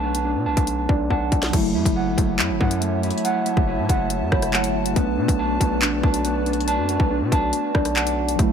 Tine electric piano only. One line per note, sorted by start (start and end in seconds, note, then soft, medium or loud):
0.00 1.48 A3 medium
0.00 1.49 B3 medium
0.00 1.51 D4 medium
0.89 1.09 D5 medium
1.10 1.50 F#5 medium
1.50 4.48 F#3 medium
1.50 4.49 A3 medium
1.56 4.51 E4 medium
4.32 4.52 C#5 medium
4.52 4.95 F#3 medium
4.52 4.92 A3 medium
4.52 4.97 E4 medium
4.52 4.93 F#5 medium
4.93 8.34 A3 medium
4.93 8.35 B3 medium
4.99 8.37 D4 medium
7.75 7.95 D5 medium
7.96 8.36 F#5 medium
8.36 8.53 F#3 medium
8.36 8.53 A3 medium
8.42 8.53 E4 medium